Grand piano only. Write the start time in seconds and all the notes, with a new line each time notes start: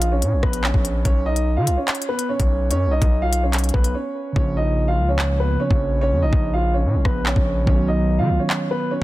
Already playing: F4 F5
0.12 C#4 C#5
0.43 B3 B4
0.64 C#4 C#5
1.05 C#4 C#5
1.26 D#4 D#5
1.57 F4 F5
1.77 C#4 C#5
2.09 B3 B4
2.29 C#4 C#5
2.71 C#4 C#5
2.91 D#4 D#5
3.22 F4 F5
3.43 C#4 C#5
3.74 B3 B4
3.95 C#4 C#5
4.36 C#4 C#5
4.57 D#4 D#5
4.88 F4 F5
5.09 C#4 C#5
5.40 B3 B4
5.60 C#4 C#5
6.01 C#4 C#5
6.22 D#4 D#5
6.54 F4 F5
6.74 C#4 C#5
7.05 B3 B4
7.26 C#4 C#5
7.67 C#4 C#5
7.88 D#4 D#5
8.19 F4 F5
8.39 C#4 C#5
8.71 B3 B4
8.91 C#4 C#5